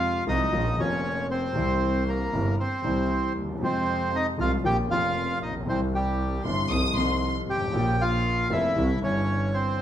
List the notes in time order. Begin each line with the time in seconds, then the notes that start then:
Already playing: F2 C3 F3 G#3 F4 F5
0.27 C2 C3 F3 G#3 D#4 F4 D#5
0.52 A#1 A#2 C#3 F3 A#3 F4
0.77 F1 F2 C#3 F3 A#3 C#4 F4 C#5
1.31 C4 C5
1.55 C2 C3 E3 G3 E4
2.08 A#3 A#4
2.32 G1 G2 C3 E3 G3 E4
2.60 C4 C5
2.82 C2 C3 E3 G3
2.86 E4
3.36 D#2
3.43 D2
3.49 D#2
3.55 E2
3.59 F2 C3 F3 G#3 C4
3.64 F4 C5
4.15 D#4 D#5
4.38 C2 C3 F3 G#3 F4 F5
4.64 A#1 A#2 C#3 F3 A#3 F4 G4 G5
4.88 F1 F2 C#3 F3 A#3 F4 F5
4.93 F4
5.42 A#1 D#4 D#5
5.49 A1
5.55 A#1
5.60 B1
5.67 C2 C3 E3 G3 C4 E4 C5
5.95 G3 G4
6.44 G1 G2 C3 E3 G3 E4 C6
6.69 C2 C3 F3 A3 D#4 D#6
6.95 C2 C3 F3 A3 D#4 C6
7.47 G#1 G4 G5
7.54 G1
7.61 G#1
7.68 A1 C#3
7.72 A#1 A#2 F3 A#3 F4
8.01 F4 F5
8.49 F1 F2 C#3 F3 A#3 E4 F4 E5
8.75 C2 C3 E3 G3 E4
9.01 G1 G2 E3 G3 C#4 E4 C#5
9.54 C4 C5